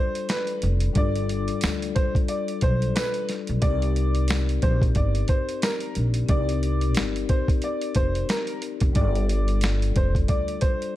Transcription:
Already playing: vibraphone G3 D4 F4 A4 D5, upright piano C5
0.15 closed hi-hat
0.29 upright piano B4, snare, closed hi-hat, tambourine
0.47 closed hi-hat
0.62 upright bass F1, closed hi-hat
0.80 closed hi-hat
0.93 upright bass G1, vibraphone G3 D4 F4, kick, closed hi-hat
0.97 vibraphone A4 D5, upright piano D5
1.16 closed hi-hat
1.29 closed hi-hat
1.48 closed hi-hat
1.61 upright bass D2, snare, closed hi-hat, tambourine
1.82 closed hi-hat
1.95 upright piano C5, kick, closed hi-hat
2.15 kick, closed hi-hat
2.28 upright piano D5, closed hi-hat
2.48 closed hi-hat
2.61 upright bass B1, upright piano C5, kick, closed hi-hat
2.82 closed hi-hat
2.96 upright piano B4, snare, closed hi-hat, tambourine
3.14 closed hi-hat
3.29 snare, closed hi-hat
3.47 upright bass B1, closed hi-hat
3.60 upright bass C2, vibraphone C4 G4 A#4, upright piano D5, kick, closed hi-hat
3.64 vibraphone D#4 D5
3.82 closed hi-hat
3.96 closed hi-hat
4.15 closed hi-hat
4.28 snare, closed hi-hat, tambourine
4.49 closed hi-hat
4.62 upright bass A#1, upright piano C5, kick, closed hi-hat
4.82 kick, closed hi-hat
4.95 upright bass G1, upright piano D5, kick, closed hi-hat
5.15 closed hi-hat
5.28 upright piano C5, kick, closed hi-hat
5.49 closed hi-hat
5.62 upright piano A#4, snare, closed hi-hat, tambourine
5.80 closed hi-hat
5.95 upright bass A#1, closed hi-hat
6.14 closed hi-hat
6.26 upright bass C2, vibraphone C4 G4 A#4, upright piano D5, kick, closed hi-hat
6.30 vibraphone D#4 D5
6.49 closed hi-hat
6.63 closed hi-hat
6.81 closed hi-hat
6.95 upright bass G1, snare, closed hi-hat, tambourine
7.16 closed hi-hat
7.29 upright piano C5, kick, closed hi-hat
7.48 kick, closed hi-hat
7.62 upright piano D5, closed hi-hat
7.81 closed hi-hat
7.95 upright bass F1, upright piano C5, kick, closed hi-hat
8.15 closed hi-hat
8.29 upright piano A#4, snare, closed hi-hat, tambourine
8.47 closed hi-hat
8.62 closed hi-hat
8.80 upright bass F1, kick, closed hi-hat
8.93 upright bass G1, vibraphone G3 D4 F4, upright piano D5, kick, closed hi-hat
8.97 vibraphone A4 D5
9.15 closed hi-hat
9.29 closed hi-hat
9.48 closed hi-hat
9.61 snare, closed hi-hat, tambourine
9.82 closed hi-hat
9.96 upright bass F1, upright piano C5, kick, closed hi-hat
10.15 kick, closed hi-hat
10.28 upright bass D2, upright piano D5, kick, closed hi-hat
10.48 closed hi-hat
10.61 upright piano C5, kick, closed hi-hat
10.82 closed hi-hat

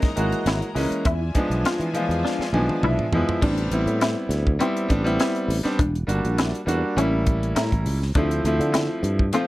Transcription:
Already playing: string section C#5 D#5 A#5
0.02 muted fretless electric bass stroke, kick, snare, closed hi-hat
0.16 fretless electric bass G#1, grand piano E3 G#3 A#3 F#4, closed hi-hat
0.32 muted fretless electric bass stroke, closed hi-hat
0.46 fretless electric bass G#1, clean electric guitar E4, snare, closed hi-hat
0.62 closed hi-hat
0.74 fretless electric bass C#2, grand piano E3 G#3 A#3 C#4, snare, open hi-hat
0.91 muted fretless electric bass stroke, closed hi-hat
1.05 fretless electric bass E2, clean electric guitar E4, string section F4 D5 E5 G#5, kick, closed hi-hat
1.34 grand piano F3 G#3 B3 D4, muted fretless electric bass stroke, kick, closed hi-hat
1.50 fretless electric bass B1, closed hi-hat
1.65 clean electric guitar F4, snare, closed hi-hat
1.80 fretless electric bass E3, closed hi-hat
1.93 grand piano F3 G#3 B3 F4, closed hi-hat
2.09 fretless electric bass E2, closed hi-hat
2.25 clean electric guitar D4, snare
2.39 muted fretless electric bass stroke, snare
2.53 fretless electric bass B1, grand piano F3 G#3 B3 D4 G#5, high tom
2.69 muted fretless electric bass stroke, high tom
2.83 fretless electric bass B1, clean electric guitar E4, grand piano E5, mid tom
2.99 mid tom
3.12 fretless electric bass E2, grand piano F3 G#3 B3 E4, floor tom
3.28 muted fretless electric bass stroke, floor tom
3.42 fretless electric bass A1, grand piano G3 B3 C4 D4, clean electric guitar D4, kick, crash
3.58 closed hi-hat
3.71 fretless electric bass A1, grand piano G3 B3 C4 E4, closed hi-hat
3.86 fretless electric bass A2, closed hi-hat
4.01 clean electric guitar E4, snare, closed hi-hat
4.29 fretless electric bass D2, snare, closed hi-hat
4.47 kick
4.59 grand piano G3 B3 C4 E4, clean electric guitar C4, closed hi-hat
4.77 closed hi-hat
4.88 fretless electric bass A1, grand piano G3 B3 C4 D4, kick, closed hi-hat
5.04 grand piano G3 B3 C4 E4, closed hi-hat
5.20 clean electric guitar E4, snare, closed hi-hat
5.36 closed hi-hat
5.48 fretless electric bass A1, open hi-hat
5.63 grand piano G3 B3 C4 D4, snare, closed hi-hat
5.79 fretless electric bass E1, clean electric guitar D4, kick, closed hi-hat
5.95 closed hi-hat
6.07 fretless electric bass G1, grand piano G3 A#3 D4 F#4, closed hi-hat
6.25 fretless electric bass A#1, closed hi-hat
6.38 clean electric guitar E4, snare, closed hi-hat
6.55 closed hi-hat
6.66 fretless electric bass E2, grand piano G3 A#3 D4 F#4, closed hi-hat
6.96 fretless electric bass A1, grand piano G3 A#3 C#4 E4, clean electric guitar C#4, closed hi-hat
7.27 kick, closed hi-hat
7.43 closed hi-hat
7.56 fretless electric bass A2, clean electric guitar E4, grand piano A#5, snare, closed hi-hat
7.72 fretless electric bass A1, kick, closed hi-hat
7.86 fretless electric bass C#2, open hi-hat
8.02 snare
8.15 fretless electric bass D2, grand piano F3 A3 C4 E4, clean electric guitar D4, kick, closed hi-hat
8.31 closed hi-hat
8.44 fretless electric bass D2, grand piano F3 A3 C4 E4, closed hi-hat
8.60 fretless electric bass D3, closed hi-hat
8.74 clean electric guitar E4, snare, closed hi-hat
9.03 fretless electric bass G2, closed hi-hat
9.19 kick
9.33 grand piano F3 A3 C4 F4, clean electric guitar C4, closed hi-hat

